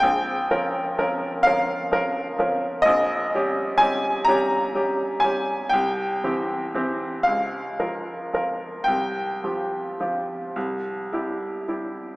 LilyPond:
\new Staff \with { instrumentName = "Upright piano" } { \time 12/8 \key c \phrygian \tempo 4. = 41 << { g''4. f''4. ees''4 aes''8 bes''4 aes''8 | g''4. f''4. g''2~ g''8 r8 | } \\ { bes,,8 <f des' bes'>8 <f des' bes'>8 <f des' bes'>8 <f des' bes'>8 <f des' bes'>8 bes,,8 <g des' g'>8 <g des' g'>8 <g des' g'>8 <g des' g'>8 <g des' g'>8 | c,8 <e c' g'>8 <e c' g'>8 des,8 <f f' bes'>8 <f f' bes'>8 c,8 <f f' g'>8 <f f' g'>8 c,8 <g e' g'>8 <g e' g'>8 | } >> }